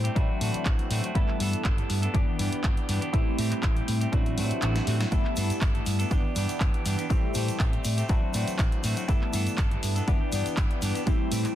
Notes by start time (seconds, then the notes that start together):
Already playing: G3 A3 C4 E4
0.04 A3 C4 G4, closed hi-hat
0.15 A1 E3 F#3 A3 C4 D4 E4 F#4, kick, closed hi-hat
0.29 A3 C4 F#4, muted fingered electric bass stroke
0.40 A2 E3 A3 C4 F#4, open hi-hat
0.54 muted fingered electric bass stroke, closed hi-hat
0.65 A1, kick, clap, closed hi-hat
0.79 closed hi-hat
0.90 A2 E3 A3 C4 F#4, open hi-hat
1.03 A3 C4 F#4, closed hi-hat
1.15 G1 E3 G3 A3 B3 D4 E4 A4, kick, closed hi-hat
1.28 clap
1.39 G2 E3 B3 D4 A4, open hi-hat
1.53 muted fingered electric bass stroke, closed hi-hat
1.65 G1 E3 B3 D4 A4, kick, clap, closed hi-hat
1.77 B3 D4 A4, closed hi-hat
1.90 G2, open hi-hat
2.02 B3 D4 A4, closed hi-hat
2.14 G1 E3 B3 D4 G4, kick, closed hi-hat
2.27 B3 D4 G4
2.39 G2 E3 B3 D4 G4, open hi-hat
2.52 muted fingered electric bass stroke, closed hi-hat
2.64 G1 E3 D4 G4, kick, clap, closed hi-hat
2.77 closed hi-hat
2.88 G2 E3 B3 D4 G4, open hi-hat
3.01 B3 D4 G4, closed hi-hat
3.13 A1 E3 G3 A3 C4 E4 G4, kick, closed hi-hat
3.38 A2 E3 A3 C4 G4, open hi-hat
3.51 muted fingered electric bass stroke, clap, closed hi-hat
3.63 A1 E3, kick, clap, closed hi-hat
3.76 A3 C4 G4, closed hi-hat
3.88 A2, open hi-hat
4.01 A3 C4 G4, closed hi-hat
4.12 A1 E3 F#3 A3 C4 D4 E4 F#4, kick, closed hi-hat, swell
4.26 A3 C4 F#4, closed hi-hat
4.37 A2 E3 A3 C4 F#4, open hi-hat
4.51 muted fingered electric bass stroke, closed hi-hat
4.62 A1 E3 A3 C4 F#4, clap, closed hi-hat
4.76 snare, closed hi-hat
4.87 A2 E3 A3 C4 F#4, open hi-hat
5.00 A3 C4 F#4, snare, closed hi-hat
5.11 G1 E3 G3 A3 B3 D4 E4 A4, kick, closed hi-hat, shaker
5.25 clap
5.36 G2 E3 B3 D4 A4, open hi-hat, shaker
5.50 muted fingered electric bass stroke, closed hi-hat, shaker
5.61 G1 E3 B3 D4 A4, kick, clap, closed hi-hat, shaker
5.74 B3 D4 A4, closed hi-hat
5.86 G2, open hi-hat, shaker
5.99 B3 D4 A4, closed hi-hat, shaker
6.10 G1 E3 B3 D4, kick, closed hi-hat, shaker
6.24 B3 D4 G4
6.35 G2 E3 B3 D4 G4, open hi-hat, shaker
6.49 muted fingered electric bass stroke, closed hi-hat, shaker
6.60 G1 E3 B3 G4, kick, clap, closed hi-hat, shaker
6.74 closed hi-hat
6.85 G2 E3 B3 D4 G4, open hi-hat, shaker
6.98 B3 D4 G4, closed hi-hat, shaker
7.10 A1 E3 G3 A3 C4 E4 G4, kick, closed hi-hat, shaker
7.34 A2 E3 A3 C4 G4, open hi-hat, shaker
7.48 muted fingered electric bass stroke, closed hi-hat, shaker
7.59 A1 E3, kick, clap, closed hi-hat, shaker
7.72 A3 C4 G4, closed hi-hat
7.85 A2, open hi-hat, shaker
7.97 A3 C4 G4, closed hi-hat, shaker
8.09 A1 E3 F#3 A3 C4 D4 E4 F#4, kick, closed hi-hat, shaker
8.22 A3 C4 F#4, muted fingered electric bass stroke
8.34 A2 E3 A3 C4 F#4, open hi-hat, shaker
8.48 muted fingered electric bass stroke, closed hi-hat, shaker
8.59 A1 E3 A3, kick, clap, closed hi-hat, shaker
8.72 closed hi-hat
8.83 A2 E3 A3 C4 F#4, open hi-hat, shaker
8.96 A3 C4 F#4, closed hi-hat, shaker
9.08 G1 E3 G3 A3 B3 D4 E4 A4, kick, closed hi-hat, shaker
9.22 clap
9.33 G2 E3 B3 D4 A4, open hi-hat, shaker
9.47 muted fingered electric bass stroke, closed hi-hat, shaker
9.58 G1 E3 B3 D4 A4, kick, clap, closed hi-hat, shaker
9.71 B3 D4 A4, closed hi-hat
9.83 G2, open hi-hat, shaker
9.95 B3 D4 A4, closed hi-hat, shaker
10.07 G1 E3 B3 D4 G4, kick, closed hi-hat, shaker
10.20 B3 D4 G4
10.32 G2 E3 B3 D4 G4, open hi-hat, shaker
10.46 muted fingered electric bass stroke, closed hi-hat, shaker
10.57 G1 D4, kick, clap, closed hi-hat, shaker
10.71 closed hi-hat
10.82 G2 E3 B3 D4 G4, open hi-hat, shaker
10.95 B3 D4 G4, closed hi-hat, shaker
11.06 A1 E3 G3 A3 C4 E4 G4, kick, closed hi-hat, shaker
11.31 A2 E3 A3 C4 G4, open hi-hat, shaker
11.45 muted fingered electric bass stroke, clap, closed hi-hat, shaker